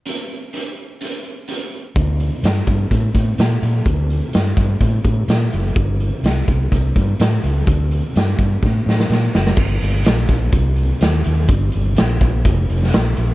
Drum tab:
CC |----------------|----------------|----------------|----------------|
HH |x---x---x---x---|x-x-x-x-x-x-x-x-|x-x-x-x-x-x-x-x-|x-x-x-x-x-x-x-x-|
SD |----------------|----o-------o---|----o-------o---|----o-------o---|
BD |----------------|o-----o-o-o-----|o-----o-o-o-----|o-----o-o-o-----|

CC |----------------|x---------------|----------------|
HH |x-x-x-x---------|--x-x-x-x-x-x-x-|x-x-x-x-x-x-x-x-|
SD |----o---o-ooo-oo|----o-o-----o---|----o------oo---|
BD |o-----o-o-------|o-----o-o-------|o-----o-o-------|